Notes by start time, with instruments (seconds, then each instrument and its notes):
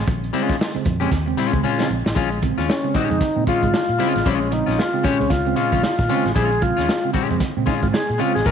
0.07 fingered electric bass A#1, tine electric piano A#2, kick, closed hi-hat
0.23 tine electric piano G#3 C4, closed hi-hat
0.33 tine electric piano C#3 G#3 C4, clean electric guitar G#3 C#4 F4, closed hi-hat
0.49 muted fingered electric bass stroke, kick, snare, closed hi-hat
0.61 muted clean electric guitar stroke, snare
0.74 tine electric piano C#3 G#3 C4, muted clean electric guitar stroke, muted fingered electric bass stroke, closed hi-hat
0.85 fingered electric bass F2, tine electric piano A#2, kick, closed hi-hat
1.00 tine electric piano C#3 G#3 C4, clean electric guitar G#3 C#4 G4, closed hi-hat
1.11 fingered electric bass D#2, muted clean electric guitar stroke, kick, snare, closed hi-hat
1.26 tine electric piano C#3 G#3 C4, muted clean electric guitar stroke, closed hi-hat
1.37 tine electric piano A#2, clean electric guitar G#3 C#4 F4, closed hi-hat
1.53 fingered electric bass C#2, tine electric piano C#3 G#3 C4, muted clean electric guitar stroke, kick, closed hi-hat
1.63 tine electric piano A#2, clean electric guitar G#3 C#4 F4
1.79 tine electric piano C#3 G#3 C4, snare
1.89 fingered electric bass A#1, tine electric piano G#3 C4, muted clean electric guitar stroke
2.05 fingered electric bass A1, muted clean electric guitar stroke, snare
2.15 fingered electric bass A#1, tine electric piano A#2, clean electric guitar G#3 C#4 F4, kick, closed hi-hat
2.31 tine electric piano G#3 C4, muted clean electric guitar stroke, closed hi-hat
2.42 tine electric piano C#3 G#3 C4, muted clean electric guitar stroke, kick, closed hi-hat
2.58 fingered electric bass D#2, clean electric guitar G#3 C#4 F4, snare, closed hi-hat
2.69 tonewheel organ C#4, snare
2.84 tine electric piano C#3 G#3 C4, muted clean electric guitar stroke
2.94 tine electric piano A#2, clean electric guitar G#3 C#4 G4, tonewheel organ D#4, muted fingered electric bass stroke, kick, closed hi-hat
3.09 fingered electric bass F2, tine electric piano C#3 G#3 C4, muted clean electric guitar stroke, closed hi-hat
3.21 muted fingered electric bass stroke, muted clean electric guitar stroke, kick, snare, closed hi-hat
3.35 fingered electric bass A#2, tine electric piano C#3 G#3 C4
3.46 tine electric piano A#2, clean electric guitar G#3 C#4 F4, tonewheel organ F4, kick, closed hi-hat
3.63 fingered electric bass G#2, tine electric piano C#3 G#3 C4, muted clean electric guitar stroke, kick, closed hi-hat
3.73 muted clean electric guitar stroke, snare
3.89 fingered electric bass A#2, muted clean electric guitar stroke, closed hi-hat
3.98 tine electric piano C#3 G#3 C4, clean electric guitar G#3 C#4 F4, closed hi-hat
4.15 fingered electric bass A1, muted clean electric guitar stroke, snare, closed hi-hat
4.25 fingered electric bass A#1, tine electric piano A#2, clean electric guitar G#3 C#4 F4, tonewheel organ C#4, kick, closed hi-hat
4.40 tine electric piano G#3 C4, muted clean electric guitar stroke, closed hi-hat
4.51 tine electric piano C#3 G#3 C4, tonewheel organ D#4, muted clean electric guitar stroke, closed hi-hat
4.66 fingered electric bass A#1, clean electric guitar G#3 C#4 F4, snare, closed hi-hat
4.79 tonewheel organ F4, snare
4.93 tine electric piano C#3 G#3 C4, muted clean electric guitar stroke
5.03 tine electric piano A#2, clean electric guitar G#3 C#4 G4, tonewheel organ C#4, muted fingered electric bass stroke, kick, closed hi-hat
5.19 fingered electric bass C#2, tine electric piano C#3 G#3 C4, muted clean electric guitar stroke, closed hi-hat
5.29 fingered electric bass C#2, tonewheel organ F4, muted clean electric guitar stroke, kick, snare, closed hi-hat
5.45 tine electric piano C#3 G#3 C4, muted clean electric guitar stroke, closed hi-hat
5.56 tine electric piano A#2, clean electric guitar G#3 C#4 F4, tonewheel organ F4, closed hi-hat
5.72 fingered electric bass A#1, tine electric piano C#3 G#3 C4, clean electric guitar G#3 C#4 F4, kick, closed hi-hat
5.83 muted clean electric guitar stroke, snare
5.99 fingered electric bass A#2, muted clean electric guitar stroke, kick, snare, closed hi-hat
6.09 tine electric piano C#3 G#3 C4, clean electric guitar G#3 C#4 F4, closed hi-hat
6.25 fingered electric bass A1, muted clean electric guitar stroke, snare, closed hi-hat
6.35 fingered electric bass A#1, tine electric piano A#2, clean electric guitar G#3 C#4 F4, tonewheel organ G#4, kick, closed hi-hat
6.51 tine electric piano G#3 C4, muted clean electric guitar stroke, closed hi-hat
6.61 tine electric piano C#3 G#3 C4, tonewheel organ F4, muted clean electric guitar stroke, kick, closed hi-hat
6.77 fingered electric bass D#2, clean electric guitar G#3 C#4 F4, snare, closed hi-hat
6.89 snare
7.03 tine electric piano C#3 G#3 C4, muted clean electric guitar stroke
7.13 tine electric piano A#2, clean electric guitar G#3 C#4 G4, muted fingered electric bass stroke, kick, closed hi-hat
7.30 fingered electric bass F2, tine electric piano C#3 G#3 C4, muted clean electric guitar stroke, closed hi-hat
7.40 muted clean electric guitar stroke, muted fingered electric bass stroke, kick, snare, closed hi-hat
7.56 fingered electric bass A#2, tine electric piano C#3 G#3 C4
7.66 tine electric piano A#2, clean electric guitar G#3 C#4 F4, tonewheel organ D#4, kick, closed hi-hat
7.82 fingered electric bass G#2, tine electric piano C#3 G#3 C4, tonewheel organ F4, muted clean electric guitar stroke, kick, closed hi-hat
7.92 tonewheel organ G#4, muted clean electric guitar stroke, snare
8.07 fingered electric bass A#2, muted clean electric guitar stroke, closed hi-hat
8.18 tine electric piano C#3 G#3 C4, clean electric guitar G#3 C#4 F4, tonewheel organ F4, closed hi-hat
8.34 fingered electric bass A1, tonewheel organ G#4, muted clean electric guitar stroke, snare, closed hi-hat
8.45 fingered electric bass A#1, tine electric piano A#2, clean electric guitar G#3 C#4 F4, tonewheel organ A#4, kick, closed hi-hat